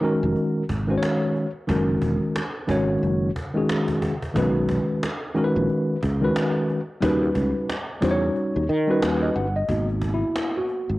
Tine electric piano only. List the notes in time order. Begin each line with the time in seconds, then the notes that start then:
0.01 D#3 G#3 C#4 F#4 A#4
0.88 D#3 G#3 C#4 F#4 C5
0.98 C#5
1.67 D#3 G#3 C#4 F#4 A#4
2.67 D#3 G#3 C#4 F#4 C#5
3.54 D#3 G#3 C#4 F#4 G#4
4.34 D#3 G#3 C#4 F#4 B4
5.34 D#3 G#3 C#4 F#4 A#4
5.44 B4
6.21 D#3 G#3 C#4 F#4 B4
7.01 G3 C#4 D#4 F#4 B4
8.01 G3 C#4 D#4 F#4 C5
8.11 C#5
8.87 G3 C#4 D#4 F#4 B4
9.22 D#5
9.36 F#5
9.56 D#5
9.69 A#3 B3 D#4 F#4
10.14 E4
10.57 F#4